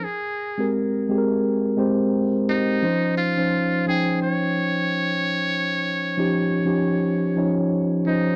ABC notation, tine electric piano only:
X:1
M:4/4
L:1/16
Q:"Swing 16ths" 1/4=86
K:Dblyd
V:1 name="Tine electric piano"
z3 [A,CGB]3 [A,CGAB]4 [A,CGc]4 [A,CGc]2 | [F,DEc]3 [F,DEc]3 [F,DEg]6- [F,DEg] z3 | z3 [F,DEG]3 [F,DEG]4 [F,DEd]4 [F,DEc]2 |]